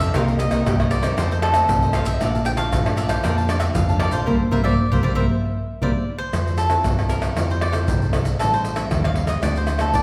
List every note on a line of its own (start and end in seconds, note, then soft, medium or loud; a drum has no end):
0.00 0.11 F2 medium
0.00 0.12 C3 medium
0.00 0.11 C4 medium
0.00 0.11 D4 medium
0.00 0.11 A4 medium
0.00 0.14 A4 soft
0.00 0.13 D5 soft
0.00 0.13 E5 medium
0.00 0.13 F5 medium
0.00 pandeiro medium
0.00 shaker medium
0.14 0.47 C2 medium
0.14 0.64 C3 medium
0.14 0.36 A#3 medium
0.14 0.27 D#4 medium
0.14 0.37 D#4 medium
0.14 0.37 G4 medium
0.14 0.27 A#4 medium
0.14 0.28 C5 medium
0.14 0.27 D#5 medium
0.14 0.39 F5 loud
0.14 pandeiro medium
0.14 tamborim medium
0.14 shaker medium
0.14 surdo medium
0.28 0.39 A#4 soft
0.28 0.40 C5 soft
0.28 0.40 D#5 soft
0.28 pandeiro soft
0.28 shaker soft
0.28 surdo soft
0.39 0.61 A#3 medium
0.39 0.62 D#4 medium
0.39 0.62 G4 medium
0.39 0.90 D#5 loud
0.39 muted cavaquinho stroke soft
0.39 pandeiro medium
0.39 shaker medium
0.51 0.63 C2 medium
0.51 0.78 A#4 medium
0.51 0.78 C5 medium
0.51 0.77 D#5 medium
0.51 pandeiro medium
0.51 tamborim medium
0.51 shaker medium
0.51 surdo soft
0.66 1.10 C2 medium
0.66 1.16 G2 medium
0.66 1.01 A#3 medium
0.66 1.01 D#4 medium
0.66 1.01 G4 medium
0.66 pandeiro medium
0.66 tamborim medium
0.66 shaker medium
0.66 surdo loud
0.80 0.90 A#4 soft
0.80 0.91 C5 soft
0.80 0.91 D#5 medium
0.80 pandeiro soft
0.80 tamborim medium
0.80 shaker soft
0.90 1.03 D#4 medium
0.90 1.03 A#4 medium
0.90 1.02 C5 medium
0.90 1.31 D5 medium
0.90 1.01 D#5 medium
0.90 pandeiro medium
0.90 shaker medium
1.02 1.51 D#3 medium
1.02 1.51 A3 medium
1.02 1.52 C4 medium
1.02 1.17 A#4 medium
1.02 1.16 C5 medium
1.02 1.15 D#5 medium
1.02 pandeiro medium
1.02 tamborim medium
1.02 shaker medium
1.02 surdo soft
1.17 1.62 F2 loud
1.17 1.67 F2 medium
1.17 1.29 F4 medium
1.17 1.30 A4 medium
1.17 1.30 C5 medium
1.17 1.30 D#5 medium
1.17 pandeiro medium
1.17 tamborim medium
1.17 shaker medium
1.17 surdo medium
1.31 1.55 A4 soft
1.31 1.37 C5 medium
1.31 1.54 C5 soft
1.31 1.53 D#5 soft
1.31 pandeiro soft
1.31 shaker soft
1.42 1.96 A4 loud
1.42 pandeiro medium
1.42 tamborim medium
1.54 1.90 D#3 medium
1.54 1.91 A3 medium
1.54 1.91 C4 medium
1.54 1.68 A4 medium
1.54 1.68 C5 medium
1.54 1.67 D#5 medium
1.54 pandeiro medium
1.54 tamborim medium
1.54 shaker medium
1.54 surdo soft
1.69 2.03 C2 medium
1.69 2.19 C3 medium
1.69 muted cavaquinho stroke soft
1.69 pandeiro medium
1.69 shaker medium
1.69 surdo loud
1.82 1.93 A4 soft
1.82 1.94 C5 soft
1.82 1.94 D#5 soft
1.82 pandeiro soft
1.82 shaker soft
1.93 2.11 D#3 medium
1.93 2.11 A3 medium
1.93 2.12 C4 medium
1.93 2.06 F4 medium
1.93 2.06 A4 medium
1.93 2.06 C5 medium
1.93 2.04 D#5 medium
1.93 2.06 F5 medium
1.93 pandeiro medium
1.93 tamborim medium
1.93 shaker medium
1.93 surdo soft
2.05 2.18 B1 medium
2.05 2.20 A4 soft
2.05 2.19 C5 soft
2.05 2.19 D#5 medium
2.05 2.45 E5 loud
2.05 pandeiro medium
2.05 shaker medium
2.20 2.54 A#1 medium
2.20 2.70 A#2 medium
2.20 2.36 F3 medium
2.20 2.36 A3 medium
2.20 2.36 D4 medium
2.20 2.33 A#4 medium
2.20 2.33 D5 medium
2.20 2.33 F5 medium
2.20 2.33 A5 medium
2.20 pandeiro medium
2.20 tamborim medium
2.20 shaker medium
2.20 surdo medium
2.35 2.46 D5 soft
2.35 2.47 F5 soft
2.35 2.46 A5 soft
2.35 pandeiro soft
2.35 shaker soft
2.35 surdo soft
2.45 2.81 F3 medium
2.45 2.81 A3 medium
2.45 2.81 D4 medium
2.45 2.51 G5 loud
2.45 muted cavaquinho stroke soft
2.45 pandeiro medium
2.45 shaker medium
2.57 2.69 A#1 medium
2.57 2.84 D5 medium
2.57 2.94 F5 medium
2.57 2.84 F5 medium
2.57 2.83 A5 medium
2.57 pandeiro medium
2.57 tamborim medium
2.57 shaker medium
2.57 surdo soft
2.72 3.16 A#1 medium
2.72 3.21 F2 medium
2.72 pandeiro medium
2.72 tamborim medium
2.72 shaker medium
2.72 surdo loud
2.85 3.20 F3 medium
2.85 3.21 A3 medium
2.85 3.21 D4 medium
2.85 2.95 D5 soft
2.85 2.96 F5 soft
2.85 2.97 A5 soft
2.85 pandeiro soft
2.85 tamborim medium
2.85 shaker soft
2.96 3.09 A#4 soft
2.96 3.09 D5 medium
2.96 3.11 E5 loud
2.96 3.08 F5 medium
2.96 3.07 A5 medium
2.96 pandeiro medium
2.96 shaker medium
3.08 3.50 C5 medium
3.08 3.23 D5 medium
3.08 3.22 F5 medium
3.08 3.22 A5 medium
3.08 pandeiro medium
3.08 tamborim medium
3.08 shaker medium
3.08 surdo soft
3.23 3.68 F2 loud
3.23 3.72 A#2 medium
3.23 3.45 F3 medium
3.23 3.45 A3 medium
3.23 3.46 D4 medium
3.23 3.35 A#4 medium
3.23 3.36 D5 medium
3.23 3.36 F5 medium
3.23 3.36 A5 medium
3.23 pandeiro medium
3.23 tamborim medium
3.23 shaker medium
3.23 surdo medium
3.37 3.60 D5 soft
3.37 3.59 F5 soft
3.37 3.58 A5 medium
3.37 pandeiro soft
3.37 shaker soft
3.47 3.73 F3 medium
3.47 3.73 A3 medium
3.47 3.73 D4 medium
3.47 3.60 D5 medium
3.47 pandeiro medium
3.47 tamborim medium
3.47 shaker medium
3.60 3.74 D5 medium
3.60 3.65 E5 medium
3.60 3.73 F5 medium
3.60 3.73 A5 medium
3.60 pandeiro medium
3.60 tamborim medium
3.60 shaker medium
3.60 surdo soft
3.74 4.24 F2 medium
3.74 4.09 F2 loud
3.74 4.00 F5 medium
3.74 muted cavaquinho stroke soft
3.74 pandeiro medium
3.74 shaker medium
3.74 surdo loud
3.88 4.23 F3 medium
3.88 4.23 A3 medium
3.88 4.23 D4 medium
3.88 3.99 D5 soft
3.88 4.00 F5 soft
3.88 4.01 A5 soft
3.88 pandeiro soft
3.88 shaker soft
4.00 4.12 A#4 medium
4.00 4.13 D5 medium
4.00 4.12 F5 medium
4.00 4.11 A5 medium
4.00 pandeiro medium
4.00 tamborim medium
4.00 surdo soft
4.11 4.24 A#1 medium
4.11 4.53 C5 medium
4.11 4.26 D5 soft
4.11 4.26 F5 soft
4.11 4.25 A5 medium
4.11 pandeiro medium
4.11 shaker medium
4.26 4.37 C2 medium
4.26 4.35 G3 loud
4.26 4.35 A#3 loud
4.26 4.35 C4 loud
4.26 4.35 A#4 medium
4.26 4.35 C5 medium
4.26 4.35 E5 medium
4.26 surdo loud
4.51 4.62 C2 medium
4.51 4.60 G3 loud
4.51 4.60 A#3 loud
4.51 4.61 C4 loud
4.51 4.60 A#4 medium
4.51 4.60 C5 medium
4.51 4.60 E5 medium
4.51 4.64 E5 medium
4.51 surdo loud
4.63 4.75 C2 medium
4.63 4.73 G3 medium
4.63 4.73 A#3 loud
4.63 4.73 C4 medium
4.63 4.73 A#4 medium
4.63 4.73 C5 medium
4.63 4.92 D5 medium
4.63 4.73 E5 loud
4.63 surdo medium
4.92 5.02 C2 medium
4.92 5.00 G3 medium
4.92 5.00 A#3 medium
4.92 5.00 C4 medium
4.92 5.00 A#4 medium
4.92 5.05 C5 medium
4.92 5.01 C5 medium
4.92 5.01 E5 medium
4.92 surdo loud
5.03 5.14 C2 medium
5.03 5.12 G3 medium
5.03 5.12 A#3 loud
5.03 5.12 C4 medium
5.03 5.12 A#4 medium
5.03 5.12 C5 medium
5.03 5.15 D5 medium
5.03 5.12 E5 medium
5.03 surdo medium
5.15 5.26 C2 medium
5.15 5.24 G3 medium
5.15 5.24 A#3 medium
5.15 5.24 C4 medium
5.15 5.25 A#4 medium
5.15 5.25 C5 loud
5.15 6.03 E5 medium
5.15 5.25 E5 medium
5.15 surdo loud
5.82 5.92 C2 loud
5.82 5.90 G3 medium
5.82 5.90 A#3 medium
5.82 5.90 C4 medium
5.82 5.90 A#4 medium
5.82 5.90 C5 medium
5.82 6.18 D5 medium
5.82 5.90 E5 medium
5.82 surdo loud
6.18 6.59 C5 loud
6.33 6.77 F2 loud
6.33 6.83 F3 medium
6.33 pandeiro medium
6.33 tamborim medium
6.33 shaker medium
6.33 surdo medium
6.47 pandeiro soft
6.47 shaker soft
6.47 surdo soft
6.58 7.06 A4 medium
6.58 pandeiro medium
6.58 shaker medium
6.70 7.06 C4 medium
6.70 7.06 E4 medium
6.70 7.06 A4 medium
6.70 pandeiro medium
6.70 tamborim medium
6.70 shaker medium
6.70 surdo soft
6.84 7.29 C2 medium
6.84 7.35 C3 medium
6.84 pandeiro medium
6.84 tamborim medium
6.84 shaker medium
6.84 surdo loud
6.99 pandeiro soft
6.99 tamborim medium
6.99 shaker soft
7.09 7.32 C4 medium
7.09 7.32 E4 soft
7.09 7.33 A4 medium
7.09 7.46 A#4 medium
7.09 pandeiro medium
7.09 shaker medium
7.22 pandeiro medium
7.22 tamborim medium
7.22 shaker medium
7.22 surdo soft
7.36 7.89 F2 loud
7.36 7.86 F3 medium
7.36 7.72 C4 medium
7.36 7.72 E4 medium
7.36 7.72 A4 medium
7.36 pandeiro medium
7.36 tamborim medium
7.36 shaker medium
7.36 surdo medium
7.50 7.62 C5 medium
7.50 pandeiro soft
7.50 shaker soft
7.61 7.76 D5 medium
7.61 pandeiro medium
7.61 tamborim medium
7.72 8.09 C4 medium
7.72 8.09 E4 medium
7.72 8.09 A4 medium
7.72 8.10 C5 medium
7.72 pandeiro medium
7.72 tamborim medium
7.72 shaker medium
7.72 surdo soft
7.88 8.10 C2 medium
7.88 8.37 C3 medium
7.88 pandeiro medium
7.88 shaker medium
7.88 surdo loud
8.02 pandeiro soft
8.02 shaker soft
8.13 8.36 C2 medium
8.13 8.29 C4 medium
8.13 8.29 E4 medium
8.13 8.29 A4 medium
8.13 pandeiro medium
8.13 tamborim medium
8.13 shaker medium
8.13 surdo soft
8.25 pandeiro medium
8.25 shaker medium
8.39 8.84 A1 loud
8.39 8.90 A2 medium
8.39 8.65 G3 medium
8.39 8.65 C4 medium
8.39 8.65 D#4 medium
8.39 8.52 A4 medium
8.39 pandeiro medium
8.39 tamborim medium
8.39 shaker medium
8.39 surdo medium
8.54 8.77 C5 medium
8.54 pandeiro soft
8.54 shaker soft
8.54 surdo soft
8.65 pandeiro medium
8.65 shaker medium
8.76 9.12 G3 medium
8.76 9.13 C4 medium
8.76 9.13 D#4 medium
8.76 9.01 E5 medium
8.76 pandeiro medium
8.76 tamborim medium
8.76 shaker medium
8.76 surdo soft
8.91 9.35 D#2 medium
8.91 9.41 A2 medium
8.91 pandeiro medium
8.91 tamborim medium
8.91 shaker medium
8.91 surdo loud
9.04 9.28 F5 medium
9.04 pandeiro soft
9.04 tamborim medium
9.04 shaker soft
9.16 9.32 G3 medium
9.16 9.32 C4 medium
9.16 9.32 D#4 medium
9.16 pandeiro medium
9.27 9.42 D#5 medium
9.27 pandeiro medium
9.27 tamborim medium
9.27 shaker medium
9.27 surdo soft
9.43 9.95 D2 loud
9.43 9.93 D3 medium
9.43 9.68 A3 medium
9.43 9.68 C4 medium
9.43 9.68 F#4 medium
9.43 9.56 D5 loud
9.43 pandeiro medium
9.43 tamborim medium
9.43 shaker medium
9.43 surdo medium
9.56 9.83 C5 medium
9.56 pandeiro soft
9.56 shaker soft
9.67 pandeiro medium
9.67 tamborim medium
9.67 shaker medium
9.79 10.03 A3 medium
9.79 10.03 C4 medium
9.79 10.03 F#4 medium
9.79 9.95 A4 medium
9.79 pandeiro medium
9.79 tamborim medium
9.79 shaker medium
9.79 surdo soft
9.94 10.03 A1 medium
9.94 10.03 A2 medium
9.94 10.03 D5 medium
9.94 pandeiro medium
9.94 shaker medium
9.94 surdo loud